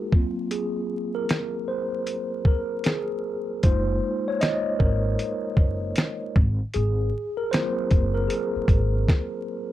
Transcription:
0.00 0.14 G#3 soft
0.00 0.14 A#3 soft
0.00 0.14 D#4 soft
0.00 0.14 F4 soft
0.00 0.15 F#4 medium
0.00 0.14 G#4 medium
0.00 0.15 A#4 medium
0.12 1.26 F#3 soft
0.12 1.26 A#3 soft
0.12 1.26 C4 soft
0.12 1.26 F4 medium
0.12 kick medium
0.51 1.11 G#4 medium
0.51 closed hi-hat medium
1.15 1.70 A#4 medium
1.29 snare loud
1.29 closed hi-hat medium
1.68 2.48 C5 medium
2.07 closed hi-hat medium
2.45 2.87 A#4 medium
2.45 kick medium
2.84 3.45 G#4 medium
2.84 snare loud
2.84 closed hi-hat medium
3.63 3.98 F#1 medium
3.63 4.19 G#3 soft
3.63 4.19 A#3 soft
3.63 4.20 D#4 soft
3.63 4.20 F4 medium
3.63 4.23 C5 medium
3.63 kick loud
3.63 closed hi-hat medium
4.28 4.42 C#5 medium
4.41 4.77 D#5 medium
4.41 snare loud
4.41 closed hi-hat medium
4.79 5.15 G#1 medium
4.79 6.31 A#4 medium
4.79 kick medium
5.19 closed hi-hat medium
5.57 5.92 F#1 medium
5.57 kick medium
5.96 snare loud
5.96 closed hi-hat medium
6.36 6.58 G#1 medium
6.36 kick loud
6.74 7.10 G#1 medium
6.74 7.40 G#4 medium
6.74 closed hi-hat medium
7.37 7.51 A#4 medium
7.51 9.72 F#3 soft
7.51 9.72 A#3 soft
7.51 9.72 C4 soft
7.51 9.72 F4 medium
7.51 8.18 C5 medium
7.51 snare loud
7.51 closed hi-hat medium
7.91 8.26 F#1 medium
7.91 kick medium
7.91 closed hi-hat soft
8.14 8.30 A#4 medium
8.28 9.42 G#4 medium
8.28 closed hi-hat medium
8.56 muted upright bass stroke soft
8.68 9.03 G#1 medium
8.68 kick medium
8.68 closed hi-hat soft
9.08 kick loud
9.08 snare medium

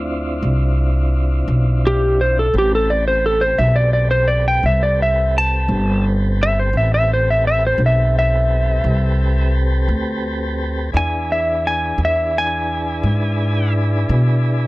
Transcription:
0.00 0.39 D2 medium
0.00 2.49 C4 medium
0.00 2.49 D4 medium
0.00 2.49 E4 medium
0.00 2.48 F4 medium
0.42 1.45 C2 medium
1.48 2.50 B1 medium
1.87 2.19 G4 loud
2.21 2.37 C5 medium
2.39 2.55 A4 medium
2.53 3.56 A1 medium
2.53 6.70 C4 medium
2.53 6.70 G4 medium
2.53 6.70 A4 medium
2.53 6.71 B4 medium
2.58 2.73 G4 medium
2.75 2.90 A4 medium
2.90 3.06 D5 medium
3.08 3.24 C5 medium
3.26 3.42 A4 medium
3.41 3.58 C5 medium
3.58 4.61 B1 medium
3.58 3.76 E5 medium
3.76 3.92 D5 medium
3.93 4.10 D5 medium
4.11 4.28 C5 medium
4.28 4.45 D5 medium
4.48 4.64 G5 medium
4.63 5.65 C2 medium
4.63 4.82 E5 medium
4.83 4.99 D5 medium
5.02 5.35 E5 medium
5.38 6.04 A5 loud
5.68 6.71 G1 medium
6.43 6.58 E5 loud
6.59 6.75 C5 medium
6.73 7.76 A1 medium
6.73 10.90 C4 medium
6.73 10.90 G4 medium
6.73 10.91 A4 medium
6.73 10.91 B4 medium
6.77 6.93 E5 medium
6.94 7.10 E5 medium
7.13 7.28 C5 medium
7.30 7.46 E5 medium
7.47 7.63 E5 medium
7.67 7.81 C5 medium
7.78 8.80 B1 medium
7.86 8.17 E5 medium
8.19 9.53 E5 loud
8.84 9.86 C2 medium
9.88 10.91 D2 medium
10.92 11.96 E2 medium
10.92 14.67 D4 medium
10.92 14.67 E4 medium
10.92 14.67 G#4 medium
10.92 14.67 B4 medium
10.97 11.30 G#5 medium
11.32 11.65 E5 medium
11.67 12.00 G#5 medium
11.98 13.01 E2 medium
12.05 12.36 E5 medium
12.38 13.72 G#5 loud
13.03 14.06 G#2 medium
14.09 14.67 B2 medium

